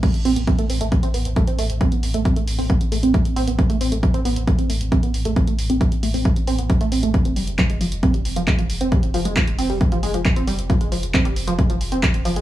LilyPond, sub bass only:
\new Staff \with { instrumentName = "Sub bass" } { \clef bass \time 4/4 \key a \minor \tempo 4 = 135 r16 a,,16 a,,16 a,,16 r16 a,,16 a,,16 a,,16 r16 a,,16 a,,16 a,,16 r16 a,,16 a,,16 a,,16 | r16 a,,16 a,,16 a,,16 r16 a,,16 a,,16 a,,16 r16 a,,16 a,,16 a,,16 r16 a,,16 a,,16 a,,16 | r16 a,,16 a,,16 a,,16 r16 a,,16 a,,16 a,,16 r16 a,,16 a,,16 a,,16 r16 a,,16 a,,16 a,,16 | r16 a,,16 a,,16 a,,16 r16 a,,16 a,,16 a,,16 r16 a,,16 a,,16 a,,16 r16 a,,16 a,,16 a,,16 |
r16 f,,16 f,,16 f,,16 r16 f,,16 f,,16 f,,16 r16 f,,16 f,,16 f,,16 r16 f,,16 f,,16 f,,16 | r16 f,,16 f,,16 f,,16 r16 f,,16 f,,16 f,,16 r16 f,,16 f,,16 f,,16 r16 f,,16 f,,16 f,,16 | r16 f,,16 f,,16 f,,16 r16 f,,16 f,,16 f,,16 r16 f,,16 f,,16 f,,16 r16 f,,16 f,,16 f,,16 | }